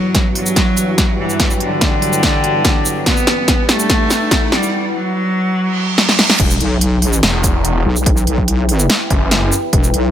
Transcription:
Already playing: G2 E3 F#3 E4 B4, riser
0.15 kick, snare, closed hi-hat
0.35 F#3, open hi-hat
0.46 G5, shaker
0.56 kick, snare, closed hi-hat
0.77 closed hi-hat, shaker
0.98 kick, snare, closed hi-hat
1.19 E3
1.30 shaker
1.40 kick, snare, closed hi-hat
1.50 shaker
1.60 D3, closed hi-hat
1.81 kick, snare, closed hi-hat
2.02 open hi-hat
2.13 shaker
2.23 kick, snare, closed hi-hat
2.44 closed hi-hat
2.65 kick, snare, closed hi-hat
2.85 shaker
3.06 G3 B3, kick, snare, closed hi-hat
3.17 shaker
3.27 snare, closed hi-hat
3.48 kick, snare, closed hi-hat
3.59 F#5
3.69 A3, snare, open hi-hat
3.79 shaker
3.90 kick, snare, closed hi-hat
4.10 snare, closed hi-hat, shaker
4.31 kick, snare, closed hi-hat
4.52 G3, snare
4.63 shaker
4.94 F#3
5.56 reverse cymbal
5.98 snare
6.09 snare
6.19 snare
6.30 snare
6.40 E1 E4, kick, closed hi-hat, crash, impact
6.50 shaker
6.60 B1 B4, closed hi-hat
6.81 closed hi-hat
7.02 A#1, open hi-hat
7.11 G5, shaker
7.23 E1, snare, closed hi-hat
7.44 kick, closed hi-hat, shaker
7.65 closed hi-hat
7.85 B1
7.96 shaker
8.06 kick, closed hi-hat
8.17 shaker
8.27 B1, closed hi-hat
8.38 kick
8.48 closed hi-hat
8.69 open hi-hat
8.79 shaker
8.90 snare, closed hi-hat
9.10 F#1, kick, closed hi-hat
9.31 snare, closed hi-hat
9.52 shaker
9.73 E1, kick, closed hi-hat
9.84 shaker
9.94 B1, closed hi-hat

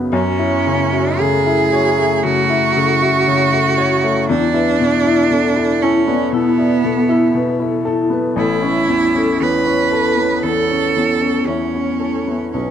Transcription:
Already playing: F#2 C#3 B3 C#4 F#4 B4
0.12 F#2 A3 C#4 E4 F#4
0.39 E4 C#5
0.67 C#3
0.93 E4 F#4
1.18 C#3 G#4 A4
1.46 E4 A4
1.72 F#4 C#5
1.97 A3 E5
2.23 C#3 F#4
2.50 E4 E5
2.76 C#3 A4
3.01 E4 F#4
3.27 C#3 C#5
3.52 E4 A4
3.78 F#4 C#5
4.04 A3 C#5
4.29 E2 B3 D4 E4 A4
4.54 E4 B4
4.80 B2
5.04 E4
5.31 B2
5.56 E4 A4
5.82 C#4 E4 A4
6.07 B3 D5
6.32 B2 B3 E4
6.58 E4 D5
6.84 B2 A4
7.09 E4
7.34 B2 B4
7.60 E4 A4
7.85 E4 A4
8.10 B3 B4
8.36 A1 B3 E4 A4 C#5
8.62 C#4 E5
8.88 E2
9.15 C#4 A4
9.41 E2 B4 C#5
9.66 C#4 C#5
9.91 A4
10.17 B3 A5
10.43 E2 A4
10.70 C#4 A5
10.96 E2 C#5
11.21 C#4 A4
11.47 E2 C#4 E5
11.74 C#4 C#5
12.00 A4
12.27 B3 E5
12.53 B1 B3 C#4 F#4 B4 C#5

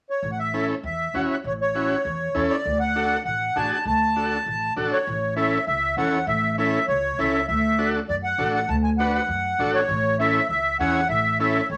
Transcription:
0.10 C#5
0.23 A1
0.31 F#5
0.39 E5
0.54 C#4 E4 A4
0.83 E2 E5
1.14 E2 C#4 E4 F#4 F#5
1.31 E5
1.44 A1 C#5
1.61 C#5
1.75 C#4 E4 F#4
2.05 E2
2.35 E2 C#4 E4 A4
2.50 D5
2.65 D2
2.80 F#5
2.95 D4 F#4 A4
3.25 A1 F#5
3.56 A1 D4 F#4 G#4 A5
3.85 D2 A5
4.16 D4 F#4 A4
4.46 A1
4.76 A1 D4 F#4 A4
4.92 C#5
5.07 A1
5.36 C#4 E4 A4 E5
5.67 C#2 E5
5.97 E2 C#4 E4 A4 F#5
6.27 A1 E5
6.58 C#4 E4 A4 E5
6.87 C#2 C#5
7.18 C#2 C#4 E4 A4 E5
7.48 D2 E5
7.78 D4 F#4 A4
8.09 F#2 D5
8.24 F#5
8.38 A1 D4 F#4 A4
8.54 F#5
8.69 D2 A5
8.83 G#5
8.98 D4 F#4 B4 F#5
9.14 F#5
9.28 F#2
9.59 A1 D4 F#4 A4
9.74 C#5
9.89 A1
10.19 C#4 E4 A4 E5
10.49 C#2 E5
10.79 E2 C#4 E4 G#4 F#5
11.09 A1 E5
11.40 C#4 E4 A4 E5
11.70 C#2 C#5

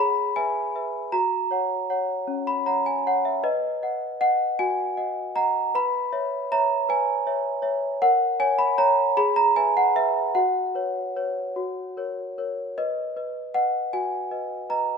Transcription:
Already playing: G#4 B5
0.36 B4 E5 G#5
0.76 B4 E5
1.12 F#4 A#5
1.51 C#5 F#5
1.90 C#5 F#5
2.27 C#4
2.47 B5
2.66 C#5 F#5 A#5
2.86 G#5
3.07 C#5 F#5
3.25 E5
3.43 B4 D#5
3.83 D#5 F#5
4.21 D#5 F#5
4.59 F#4 G#5
4.97 D#5 F#5
5.35 D#5 F#5 A#5
5.75 B4 B5
6.13 C#5 E5
6.52 C#5 E5 A#5
6.89 B4 G#5
7.27 C#5 E5
7.62 C#5 E5
8.02 A#4 F#5
8.40 C#5 G#5
8.58 B5
8.78 C#5 A#5
9.17 G#4 B5
9.36 A#5
9.56 B4 E5 G#5
9.77 F#5
9.96 B4 E5
10.35 F#4 F#5
10.75 B4 C#5
11.16 B4 C#5
11.56 F#4
11.97 A#4 C#5
12.38 A#4 C#5
12.78 B4 D#5
13.16 B4 D#5
13.54 B4 D#5 F#5
13.93 F#4 G#5
14.31 B4 D#5
14.70 B4 D#5 A#5

